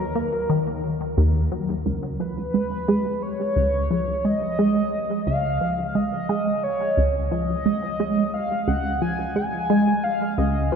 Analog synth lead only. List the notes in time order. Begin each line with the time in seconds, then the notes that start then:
Already playing: A#4
2.20 B4
3.22 C#5
4.25 D#5
5.27 F5
5.88 F5
5.95 D#5
6.63 C#5
7.31 D#5
8.34 F5
8.68 F#5
9.02 G#5
9.36 G#5
10.04 F5
10.38 D#5
10.72 C#5